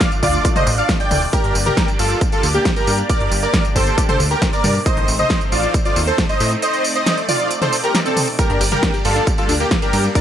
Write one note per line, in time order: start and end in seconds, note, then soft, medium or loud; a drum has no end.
0.00 1.29 A3 medium
0.00 4.82 D4 medium
0.00 1.29 F4 medium
0.00 0.11 D5 medium
0.00 4.82 D5 loud
0.00 0.11 F5 loud
0.00 kick loud
0.00 snare loud
0.00 closed hi-hat medium
0.00 tambourine soft
0.12 closed hi-hat soft
0.12 tambourine soft
0.23 0.38 D2 loud
0.23 0.44 F4 medium
0.23 0.44 D5 medium
0.23 0.44 D5 loud
0.23 kick medium
0.23 open hi-hat loud
0.23 tambourine medium
0.34 closed hi-hat soft
0.34 tambourine soft
0.45 kick loud
0.45 closed hi-hat medium
0.45 tambourine soft
0.56 0.70 C5 medium
0.56 0.70 D#5 medium
0.56 closed hi-hat soft
0.56 mid tom medium
0.56 tambourine soft
0.67 0.82 A1 loud
0.67 open hi-hat loud
0.67 tambourine medium
0.78 0.92 D5 medium
0.78 0.92 F5 loud
0.78 0.92 F5 medium
0.78 closed hi-hat soft
0.78 tambourine soft
0.89 kick loud
0.89 snare loud
0.89 closed hi-hat medium
0.89 tambourine soft
1.00 1.22 D5 medium
1.00 1.22 G5 medium
1.00 1.22 G5 loud
1.00 closed hi-hat soft
1.00 tambourine soft
1.11 1.27 D1 loud
1.11 open hi-hat loud
1.11 mid tom medium
1.11 tambourine medium
1.22 open hi-hat medium
1.33 4.83 A#3 medium
1.33 1.55 G4 medium
1.33 4.82 G4 medium
1.33 1.55 A#4 loud
1.33 kick loud
1.33 closed hi-hat medium
1.33 tambourine soft
1.44 1.52 G1 loud
1.44 closed hi-hat soft
1.55 1.71 G1 medium
1.55 open hi-hat loud
1.55 tambourine medium
1.66 1.88 G4 medium
1.66 1.88 A#4 loud
1.66 closed hi-hat soft
1.66 mid tom medium
1.77 kick loud
1.77 snare loud
1.77 closed hi-hat medium
1.77 tambourine soft
1.88 closed hi-hat soft
1.88 tambourine soft
1.99 2.15 G1 loud
1.99 2.21 F4 medium
1.99 2.21 A4 loud
1.99 open hi-hat loud
1.99 tambourine medium
2.10 closed hi-hat soft
2.10 tambourine soft
2.21 kick loud
2.21 closed hi-hat medium
2.21 tambourine soft
2.32 2.47 F4 medium
2.32 2.47 A4 medium
2.32 closed hi-hat soft
2.32 tambourine soft
2.43 2.59 D2 loud
2.43 open hi-hat loud
2.43 tambourine medium
2.54 2.69 A#3 medium
2.54 2.69 G4 medium
2.54 closed hi-hat soft
2.65 kick loud
2.65 snare loud
2.65 closed hi-hat medium
2.65 tambourine soft
2.76 2.98 G4 medium
2.76 2.98 A#4 medium
2.76 2.98 A#4 loud
2.76 closed hi-hat soft
2.76 tambourine soft
2.87 3.03 G2 loud
2.87 open hi-hat loud
2.87 tambourine medium
2.98 closed hi-hat soft
2.98 tambourine soft
3.09 3.31 A#4 medium
3.09 3.31 D5 loud
3.09 kick loud
3.09 closed hi-hat medium
3.09 tambourine soft
3.21 3.28 G1 loud
3.21 closed hi-hat soft
3.32 3.47 G1 loud
3.32 open hi-hat loud
3.32 tambourine medium
3.43 3.64 A#4 medium
3.43 3.64 D5 loud
3.43 closed hi-hat soft
3.43 tambourine soft
3.54 kick loud
3.54 snare loud
3.54 closed hi-hat medium
3.54 tambourine soft
3.65 closed hi-hat soft
3.65 tambourine soft
3.76 3.91 G1 loud
3.76 3.97 A4 medium
3.76 3.97 C5 loud
3.76 3.97 C5 medium
3.76 kick medium
3.76 open hi-hat loud
3.76 tambourine medium
3.87 closed hi-hat soft
3.87 tambourine soft
3.98 kick loud
3.98 closed hi-hat medium
3.98 tambourine soft
4.09 4.23 A4 medium
4.09 4.23 C5 medium
4.09 closed hi-hat soft
4.09 mid tom medium
4.09 tambourine soft
4.20 4.35 D2 loud
4.20 open hi-hat loud
4.20 tambourine medium
4.31 4.45 G4 medium
4.31 4.45 A#4 medium
4.31 closed hi-hat soft
4.31 tambourine soft
4.42 kick loud
4.42 snare loud
4.42 closed hi-hat medium
4.42 tambourine soft
4.53 4.74 A#4 medium
4.53 4.75 D5 medium
4.53 4.75 D5 loud
4.53 closed hi-hat soft
4.53 tambourine soft
4.64 4.80 G2 loud
4.64 open hi-hat loud
4.64 mid tom medium
4.64 tambourine medium
4.75 open hi-hat medium
4.75 tambourine soft
4.86 8.35 C4 medium
4.86 5.08 C5 medium
4.86 6.61 C5 loud
4.86 5.08 D#5 loud
4.86 kick loud
4.86 closed hi-hat medium
4.86 tambourine soft
4.97 5.05 A1 loud
4.97 closed hi-hat soft
5.08 5.24 A1 loud
5.08 open hi-hat loud
5.08 tambourine medium
5.19 5.41 C5 medium
5.19 5.41 D#5 medium
5.19 5.41 D#5 loud
5.19 closed hi-hat soft
5.19 mid tom medium
5.19 tambourine soft
5.30 kick loud
5.30 snare loud
5.30 closed hi-hat medium
5.30 tambourine soft
5.41 closed hi-hat soft
5.41 tambourine soft
5.52 5.68 A1 loud
5.52 5.74 F4 medium
5.52 5.74 D5 loud
5.52 5.74 D5 medium
5.52 open hi-hat loud
5.52 tambourine medium
5.63 closed hi-hat soft
5.63 tambourine soft
5.74 kick loud
5.74 closed hi-hat loud
5.74 tambourine soft
5.85 6.00 F4 medium
5.85 6.00 D5 medium
5.85 closed hi-hat soft
5.85 tambourine soft
5.96 6.12 D#2 loud
5.96 open hi-hat loud
5.96 tambourine medium
6.07 6.22 A4 medium
6.07 6.22 C5 medium
6.07 closed hi-hat soft
6.07 tambourine soft
6.18 kick loud
6.18 snare loud
6.18 closed hi-hat loud
6.18 tambourine soft
6.29 6.51 C5 medium
6.29 6.51 D#5 loud
6.29 6.51 D#5 medium
6.29 closed hi-hat soft
6.29 tambourine soft
6.40 6.56 A2 loud
6.40 open hi-hat loud
6.40 tambourine medium
6.51 closed hi-hat soft
6.51 tambourine soft
6.62 6.84 C5 medium
6.62 8.37 D5 medium
6.62 6.84 D#5 loud
6.62 closed hi-hat loud
6.62 tambourine soft
6.73 closed hi-hat soft
6.73 tambourine soft
6.84 open hi-hat loud
6.84 tambourine medium
6.96 7.17 C5 medium
6.96 7.17 D#5 loud
6.96 closed hi-hat soft
6.96 tambourine soft
7.06 snare loud
7.06 closed hi-hat loud
7.06 tambourine soft
7.17 closed hi-hat soft
7.17 tambourine soft
7.29 7.50 F4 medium
7.29 7.50 D5 loud
7.29 open hi-hat loud
7.29 mid tom medium
7.29 tambourine medium
7.40 closed hi-hat soft
7.40 tambourine soft
7.51 closed hi-hat loud
7.51 tambourine soft
7.62 7.76 A4 medium
7.62 7.76 C5 medium
7.62 snare soft
7.62 closed hi-hat soft
7.62 mid tom medium
7.62 tambourine soft
7.73 open hi-hat loud
7.73 tambourine medium
7.84 7.98 G4 medium
7.84 7.98 A#4 medium
7.84 closed hi-hat soft
7.84 tambourine soft
7.95 snare loud
7.95 closed hi-hat loud
7.95 tambourine soft
8.06 8.27 C4 medium
8.06 8.27 A4 medium
8.06 8.28 A4 medium
8.06 closed hi-hat soft
8.06 tambourine soft
8.17 open hi-hat loud
8.17 mid tom medium
8.17 tambourine medium
8.28 open hi-hat medium
8.28 tambourine soft
8.39 8.48 G3 medium
8.39 10.21 A#3 medium
8.39 8.60 G4 medium
8.39 8.60 A#4 loud
8.39 kick loud
8.39 closed hi-hat loud
8.39 tambourine soft
8.50 8.58 G1 loud
8.50 8.56 D4 loud
8.50 closed hi-hat soft
8.61 8.77 G1 medium
8.61 8.64 G4 medium
8.61 open hi-hat loud
8.61 ride medium
8.61 tambourine medium
8.72 8.81 G3 medium
8.72 8.94 G4 medium
8.72 8.94 A#4 loud
8.72 closed hi-hat soft
8.72 mid tom medium
8.72 tambourine soft
8.83 8.89 D4 loud
8.83 kick loud
8.83 snare loud
8.83 closed hi-hat loud
8.83 tambourine soft
8.94 8.98 G4 medium
8.94 closed hi-hat soft
8.94 tambourine soft
9.05 9.21 G1 loud
9.05 9.14 G3 medium
9.05 9.27 F4 medium
9.05 9.27 A4 loud
9.05 9.27 A4 medium
9.05 open hi-hat loud
9.05 ride medium
9.05 tambourine medium
9.16 9.22 D4 loud
9.16 closed hi-hat soft
9.16 tambourine soft
9.27 9.31 G4 medium
9.27 kick loud
9.27 closed hi-hat loud
9.27 tambourine soft
9.38 9.47 G3 medium
9.38 9.53 F4 medium
9.38 9.53 A4 medium
9.38 closed hi-hat soft
9.38 tambourine soft
9.49 9.65 D2 loud
9.49 9.55 D4 loud
9.49 open hi-hat loud
9.49 ride medium
9.49 tambourine medium
9.60 9.75 A#3 medium
9.60 9.75 G4 medium
9.60 9.75 G4 loud
9.60 9.64 G4 medium
9.60 closed hi-hat soft
9.60 tambourine soft
9.71 9.80 G3 medium
9.71 kick loud
9.71 snare loud
9.71 closed hi-hat loud
9.71 tambourine soft
9.82 9.88 D4 loud
9.82 10.04 G4 medium
9.82 10.04 A#4 loud
9.82 10.04 A#4 medium
9.82 closed hi-hat soft
9.82 tambourine soft
9.93 10.09 G2 loud
9.93 9.97 G4 medium
9.93 open hi-hat loud
9.93 ride medium
9.93 tambourine medium
10.04 10.13 G3 medium
10.04 closed hi-hat soft
10.04 tambourine soft
10.15 10.21 D4 loud
10.15 10.21 A#4 medium
10.15 10.21 C5 loud
10.15 10.21 D5 loud
10.15 kick loud
10.15 closed hi-hat medium
10.15 tambourine soft